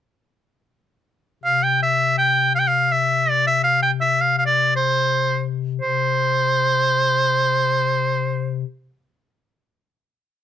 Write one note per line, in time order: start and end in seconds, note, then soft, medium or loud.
1.43 5.80 C3 medium
1.43 1.65 F5 medium
1.63 1.81 G5 medium
1.83 2.16 E5 medium
2.18 2.53 G5 medium
2.55 2.61 F5 medium
2.59 2.69 G5 medium
2.68 2.93 F5 medium
2.92 3.32 E5 medium
3.30 3.47 D5 medium
3.47 3.63 E5 medium
3.64 3.82 F5 medium
3.83 3.91 G5 medium
4.01 4.22 E5 medium
4.21 4.38 F5 medium
4.38 4.46 F5 medium
4.46 4.72 D5 medium
4.76 5.43 C5 medium
5.82 8.64 C3 medium
5.82 8.61 C5 medium